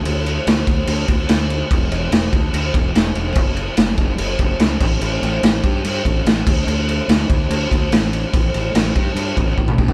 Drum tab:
CC |x-x-x-x-x-x-x-x-|x-x-x-x-x-x-x-x-|x-x-x-x-x-x-x-x-|x-x-x-x-x-x-x-x-|
SD |----o-------o---|----o-------o---|----o-------o---|----o-------o---|
T2 |----------------|----------------|----------------|----------------|
FT |----------------|----------------|----------------|----------------|
BD |------o---o-----|o-----o---o-----|o-----o---o---o-|------o---o---o-|

CC |x-x-x-x-x-x-x-x-|x-x-x-x-x-x-----|
SD |----o-------o---|----o-----------|
T2 |----------------|-------------o--|
FT |----------------|---------------o|
BD |------o---o-----|o-----o---o-o-o-|